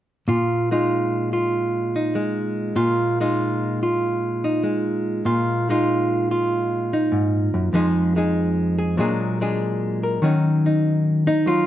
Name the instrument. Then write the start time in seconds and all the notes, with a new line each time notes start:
hollow-body jazz guitar
0.28 A#2 F4
0.71 G#3 D#4 F4
1.33 F4
1.96 D#4
2.15 G#3
2.76 A#2 F4
3.20 G#3 D#4 F4
3.83 F4
4.44 D#4
4.64 G#3
5.25 A#2 F4
5.69 G#3 D#4 F4
6.31 F4
6.93 D#4
7.12 G#2
7.54 F#2
7.73 F2 F3 G#3 D#4 G#4
8.16 G#3 D#4 G#4
8.79 G#4
8.97 A#2 F#3 G#3 D4 G#4
9.41 G#3 D4 G#4
10.03 A#4
10.22 D#3 F#3 C#4 D#4
10.66 D#4
11.27 D#4
11.46 F#3 F4